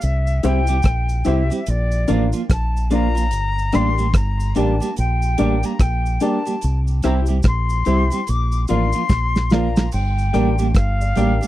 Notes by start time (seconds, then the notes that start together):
0.01 C2 E5, closed hi-hat, cabasa
0.27 cabasa
0.43 C2 G3 C4 E4 G4 C5 E5 G5, closed hi-hat, cabasa
0.67 G3 C4 E4 G4, closed hi-hat, cabasa
0.83 A#1, kick, cross-stick, closed hi-hat, cabasa
1.09 cabasa
1.25 C2 G3 C4 E4 G4 C5 E5, closed hi-hat, cabasa
1.50 G3 C4 E4 G4, closed hi-hat, cabasa
1.66 A#1 D5, closed hi-hat, cabasa
1.92 cabasa
2.08 A1 F3 A#3 D4 F4 A#4 D5, closed hi-hat, cabasa
2.33 F3 A#3 D4 F4, closed hi-hat, cabasa
2.50 A#1 A5, kick, cross-stick, closed hi-hat, cabasa
2.77 cabasa
2.90 F3 A#3 D4 F4 A#4 D5 A#5, closed hi-hat, cabasa
3.15 F3 A#3 D4 F4, closed hi-hat, cabasa
3.31 G1, closed hi-hat, cabasa
3.58 cabasa
3.72 A1 G3 A#3 D4 G4 A#4 D5 C6, cross-stick, closed hi-hat, cabasa
3.98 G3 A#3 D4 G4, closed hi-hat, cabasa
4.13 G1 A#5, kick, cross-stick, closed hi-hat, cabasa
4.40 cabasa
4.55 A1 G3 A#3 D4 G4 A#4 D5 A5, closed hi-hat, cabasa
4.80 G3 A#3 D4 G4, closed hi-hat, cabasa
4.96 A#1 G5, closed hi-hat, cabasa
5.22 cabasa
5.38 A1 G3 A#3 D4 G4 A#4 D5, closed hi-hat, cabasa
5.63 G3 A#3 D4 G4 A#5, closed hi-hat, cabasa
5.79 A#1 G5, kick, cross-stick, closed hi-hat, cabasa
6.06 cabasa
6.20 G3 A#3 D4 G4 A#4 D5 A5, closed hi-hat, cabasa
6.45 G3 A#3 D4 G4, closed hi-hat, cabasa
6.61 C2, closed hi-hat, cabasa
6.87 cabasa
7.03 C2 G3 C4 E4 G4 C5 E5 A#5, cross-stick, closed hi-hat, cabasa
7.26 G3 C4 E4 G4, closed hi-hat, cabasa
7.43 A#1, kick, cross-stick, closed hi-hat, cabasa
7.47 C6
7.70 cabasa
7.85 C2 G3 C4 E4 G4 C5 E5, closed hi-hat, cabasa
8.10 G3 C4 E4 G4, closed hi-hat, cabasa
8.27 A#1 D6, closed hi-hat, cabasa
8.52 cabasa
8.68 A1 F3 A#3 D4 F4 A#4 D5 F5 C6, closed hi-hat, cabasa
8.93 F3 A#3 D4 F4, closed hi-hat, cabasa
9.09 A#1, kick, snare, cabasa
9.36 snare, cabasa
9.50 F3 A#3 D4 F4 A#4 D5 F5 A#5, snare, cabasa
9.76 F3 A#3 D4 F4, snare, cabasa
9.92 G1 G5, crash, cabasa
10.18 cabasa
10.33 A1 G3 A#3 D4 G4 A#4 D5 G5, closed hi-hat, cabasa
10.58 G3 A#3 D4 G4, closed hi-hat, cabasa
10.75 G1 F5, kick, cross-stick, closed hi-hat, cabasa
11.00 D5 G5, cabasa
11.15 A1 G3 A#3 D4 G4 A#4 D5 G5, closed hi-hat, cabasa
11.41 G3 A#3 D4 G4, closed hi-hat, cabasa